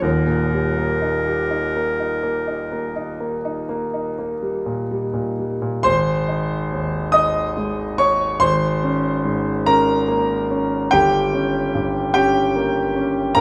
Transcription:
0.01 D#1 D#2 A#4
0.27 A#2
0.53 G3
0.78 A#3
1.02 D#4
1.27 G4
1.50 D#4
1.76 A#3
2.00 D#4
2.23 A#3
2.47 D#4
2.72 A#3
2.96 D#4
3.20 A#3
3.45 D#4
3.69 A#3
3.94 D#4
4.18 A#3
4.42 G3
4.66 A#2
4.91 G3
5.14 A#2
5.39 G3
5.62 A#2
5.83 G#1 C5 C6
6.28 D#4
6.72 D#2
7.12 D#4 D#5 D#6
7.57 G#3
7.98 D#4 C#5 C#6
8.40 G#1 C5 C6
8.83 C#4
9.25 G#2
9.66 C#4 A#4 A#5
10.08 A#3
10.50 C#4
10.91 G1 G4 G5
11.33 C#4
11.75 G2
12.14 C#4 G4 G5
12.55 A#3
12.96 C#4
13.35 G2 A#4 A#5

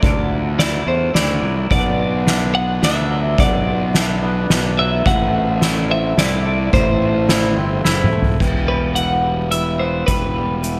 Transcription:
Already playing: D3 F#3 A3 D4 E4 D5 E5 F#5
0.03 D2 D3, kick, ride
0.31 ride
0.59 E4 D5, snare
0.86 E2 A3 C5
1.14 D2 E4 D5, snare, ride
1.42 C2 F#3
1.70 B1 B2 B3 B4 D5 F#5, kick, ride
1.99 ride
2.26 D4 E5, snare, ride
2.54 B3 D5 F#5
2.82 D2 D4 E5, snare, ride
3.11 F#3
3.38 B1 B2 D5 F#5, kick, ride
3.67 ride
3.94 D4 E5, snare, ride
4.22 B3 D5
4.50 B1 D4, snare, ride
4.79 F#3 E5
5.06 A1 A2 A3 A4 C5 E5 F#5, kick, ride
5.33 ride
5.61 E4 D5, snare, ride
5.89 C4 C5 E5
6.17 C2 E4 D5, snare, ride
6.46 A3
6.73 A1 A2 C5 E5, kick, ride
7.01 ride
7.29 E4 D5, snare, ride
7.57 G1 C4 C5
7.85 F#1 E4, snare
8.03 mid tom
8.12 E1 A3
8.22 floor tom
8.40 E1 E3 B3 G4 E5 G5, kick, crash
8.68 G3 B4
8.95 E3 F#5, closed hi-hat
9.24 G3 E5
9.51 E4 E5, closed hi-hat
9.79 B3 C5
10.07 E1 E3 B4 G5, kick, closed hi-hat
10.36 G3
10.64 E3, closed hi-hat

